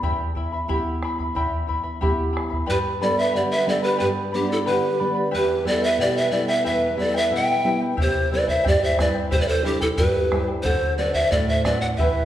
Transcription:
0.03 nylon-string guitar E2, charango E4 G4 E5 G5 B5, bombo low
0.35 charango E4 E5 G5 B5, bombo low
0.52 charango E4 E5 B5
0.68 nylon-string guitar B3 E4 G4, charango E4 G4 E5 G5 B5, bombo low
1.03 charango E4 E5 G5 B5, bombo rim
1.19 charango E4 E5 B5, bombo low
1.35 nylon-string guitar E2, charango E4 G4 E5 G5 B5, bombo low
1.67 charango E4 E5 G5 B5, bombo low
1.83 charango E4 E5 B5
2.01 nylon-string guitar B3 E4 G4, charango E4 G4 E5 G5 B5, bombo low
2.32 charango E4 E5 G5 B5
2.37 bombo rim
2.49 charango E4 E5 B5
2.53 bombo low
2.66 nylon-string guitar G2, charango G4 B4 D5 G5 B5, pan flute B4
2.71 pan flute G4
3.01 nylon-string guitar G3 B3 D4, pan flute A4 D5, charango B4 D5 G5 B5
3.17 charango B4 D5 B5, pan flute B4 E5
3.32 nylon-string guitar D3, charango G4 B4 D5 G5 B5, pan flute G4 D5
3.52 pan flute B4 E5
3.65 nylon-string guitar G3 B3 D4, charango B4 D5 G5 B5, pan flute D5
3.69 pan flute A4
3.82 pan flute G4 B4, charango B4 D5 B5
3.97 nylon-string guitar G2, charango G4 B4 D5 G5 B5, pan flute B4
4.01 pan flute G4
4.31 nylon-string guitar G3 B3 D4, pan flute G4, charango B4 D5 G5 B5
4.36 pan flute D4
4.48 pan flute A4, charango B4 D5 B5
4.53 pan flute E4
4.65 nylon-string guitar D3, charango G4 B4 D5 G5 B5, pan flute B4
4.71 pan flute G4
4.99 nylon-string guitar G3 B3 D4, charango B4 D5 G5 B5
5.15 charango B4 D5 B5
5.31 nylon-string guitar E2, charango E4 G4 B4 E5 G5, pan flute B4
5.37 pan flute G4
5.65 nylon-string guitar G3 B3 E4, charango E4 B4 E5 G5, pan flute D5
5.70 pan flute A4
5.80 charango E4 B4 G5, pan flute E5
5.86 pan flute B4
5.98 nylon-string guitar B2, charango E4 G4 B4 E5 G5, pan flute D5
6.04 pan flute G4
6.17 pan flute B4 E5
6.31 nylon-string guitar G3 B3 E4, charango E4 B4 E5 G5, pan flute D5
6.37 pan flute A4
6.48 charango E4 B4 G5, pan flute E5
6.52 pan flute B4
6.64 nylon-string guitar E2, charango E4 G4 B4 E5 G5, pan flute E5
6.69 pan flute B4
6.97 nylon-string guitar G3 B3 E4, charango E4 B4 E5 G5, pan flute D5
7.02 pan flute A4
7.14 charango E4 B4 G5, pan flute E5
7.19 pan flute B4
7.31 nylon-string guitar B2, charango E4 G4 B4 E5 G5
7.35 pan flute E5 G5
7.65 nylon-string guitar G3 B3 E4, charango E4 B4 E5 G5
7.81 charango E4 B4 G5
7.97 nylon-string guitar C3, charango E4 G4 C5 E5 G5, bombo low
8.01 pan flute G4 C5
8.31 nylon-string guitar G3 C4 E4, charango E4 C5 E5 G5, pan flute B4 D5
8.47 charango E4 C5 G5, pan flute C5 E5, bombo low
8.63 nylon-string guitar G2, charango E4 G4 C5 E5 G5, pan flute G4, bombo low
8.68 pan flute D5
8.81 pan flute C5 E5
8.97 nylon-string guitar G3 C4 E4, charango E4 C5 E5 G5, pan flute B4 D5, bombo rim, bombo low
9.14 charango E4 C5 G5
9.31 nylon-string guitar C3, charango E4 G4 C5 E5 G5, pan flute G4 C5, bombo low
9.37 pan flute B4 D5
9.47 pan flute A4 C5
9.64 nylon-string guitar G3 C4 E4, pan flute D4 G4, charango E4 C5 E5 G5
9.81 pan flute E4 A4, charango E4 C5 G5, bombo low
9.97 nylon-string guitar G2, charango E4 G4 E5 G5, pan flute G4 B4, bombo low
10.31 nylon-string guitar G3 C4 E4, charango E4 C5 E5 G5, bombo rim, bombo low
10.48 charango E4 C5 G5
10.63 nylon-string guitar D3, charango F#4 A4 C5 D5 F#5, pan flute A4 C5, bombo low
10.98 nylon-string guitar C4 D4 F#4, charango F#4 C5 D5 F#5, pan flute B4 D5
11.14 charango F#4 D5 F#5, pan flute C5 E5, bombo low
11.31 nylon-string guitar A2, charango F#4 A4 C5 D5 F#5, pan flute A4 D5, bombo low
11.49 pan flute C5 E5
11.64 nylon-string guitar C4 D4 F#4, charango F#4 C5 D5 F#5, pan flute B4 D5, bombo rim, bombo low
11.80 charango F#4 D5 F#5, pan flute D5 F#5
11.97 nylon-string guitar E3, charango E4 G4 B4 E5 G5, pan flute B4 E5, bombo low

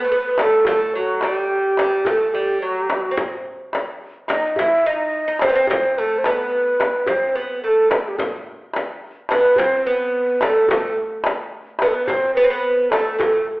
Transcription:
0.00 ney B4
0.04 oud A3
0.12 oud B3
0.38 oud A3, ney A4, darbuka tek, frame drum
0.65 oud A3, ney A4, darbuka dum, frame drum
0.79 darbuka ka
0.95 oud F#3, ney F#4
1.21 oud G3, ney G4, darbuka tek, frame drum
1.49 darbuka ka
1.77 oud G3, darbuka tek, frame drum
2.05 oud A3, ney A4, darbuka dum, frame drum
2.33 oud G3, ney G4, darbuka ka
2.62 oud F#3, ney F#4
2.90 darbuka tek, frame drum
3.11 oud C4
3.17 frame drum, darbuka dum
3.32 darbuka ka
3.73 darbuka tek, frame drum
4.01 darbuka ka
4.28 oud D#4, ney D#5, darbuka tek, frame drum
4.56 oud E4, ney E5, darbuka dum, frame drum
4.84 oud D#4, ney D#5, darbuka ka
5.28 oud D#4
5.39 oud C4, ney C5, darbuka tek, frame drum
5.49 oud B3
5.55 oud C4
5.67 oud C4, ney C5, darbuka dum, frame drum
5.82 darbuka ka
5.98 oud A3, ney A4
6.18 ney C5
6.24 oud B3, ney B4, darbuka tek, frame drum
6.52 darbuka ka
6.80 darbuka tek, frame drum
7.06 oud C4, ney C5, darbuka dum, frame drum
7.29 ney C5
7.35 oud B3, ney B4, darbuka ka
7.63 oud A3, ney A4
7.90 ney B4, darbuka tek, frame drum
8.00 ney A4
8.08 ney G4
8.17 ney A4, darbuka dum, frame drum
8.47 darbuka ka
8.74 darbuka tek, frame drum
9.02 darbuka ka
9.29 oud B3, ney B4, darbuka tek, frame drum
9.56 oud C4, ney C5, darbuka dum, frame drum
9.77 ney C5
9.85 oud B3, ney B4, darbuka ka
10.41 oud A3, ney A4, darbuka tek, frame drum
10.68 oud A3, ney A4, darbuka dum, frame drum
10.84 darbuka ka
11.24 darbuka tek, frame drum
11.52 darbuka ka
11.79 oud B3, ney B4, darbuka tek, frame drum
11.87 ney A4
11.94 ney B4
12.07 oud C4, ney C5, darbuka dum, frame drum
12.35 oud B3, ney B4, darbuka ka
12.44 oud C4
12.50 oud B3
12.90 oud A3, ney A4, darbuka tek, frame drum
13.18 oud A3, ney A4, darbuka dum, frame drum
13.35 darbuka ka

